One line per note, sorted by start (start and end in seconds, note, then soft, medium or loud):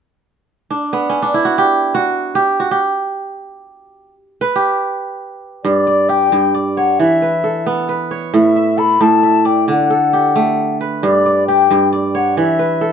0.70 1.16 D4 medium
0.93 2.79 B3 medium
1.09 1.28 C#4 medium
1.22 2.90 D4 medium
1.34 2.91 E4 medium
1.45 1.64 F#4 medium
1.58 2.01 G4 medium
1.95 2.41 F#4 medium
2.35 2.66 G4 medium
2.60 2.77 F#4 medium
2.71 4.12 G4 medium
4.41 5.64 B4 medium
4.56 5.97 G4 medium
5.64 6.31 G2 medium
5.64 6.11 D5 medium
5.87 6.54 D5 medium
6.09 7.50 G4 medium
6.09 6.54 G5 medium
6.32 7.04 G2 medium
6.55 7.65 D5 medium
6.77 7.92 C#5 medium
6.77 7.01 F#5 medium
6.99 8.39 E3 medium
6.99 7.67 E5 medium
7.22 7.88 B4 medium
7.44 8.76 A4 medium
7.66 9.53 B3 medium
7.89 9.12 B4 medium
8.11 9.26 C#5 medium
8.34 8.99 A2 medium
8.34 8.80 E5 medium
8.56 9.23 E5 medium
8.78 9.90 A4 medium
8.78 9.03 B5 medium
9.01 9.73 A2 medium
9.01 9.48 A5 medium
9.23 10.26 E5 medium
9.45 10.56 D5 medium
9.45 9.68 G5 medium
9.68 11.08 D3 medium
9.68 10.77 F#5 medium
9.90 11.22 A4 medium
10.13 11.48 G4 medium
10.36 12.35 A3 medium
10.81 12.04 B4 medium
11.03 11.69 G2 medium
11.03 11.44 D5 medium
11.26 11.92 D5 medium
11.47 12.90 G4 medium
11.47 11.89 G5 medium
11.71 12.42 G2 medium
11.93 12.92 D5 medium
12.15 12.92 C#5 medium
12.15 12.36 F#5 medium
12.37 12.92 E3 medium
12.37 12.92 E5 medium
12.59 12.92 B4 medium
12.81 12.92 A4 medium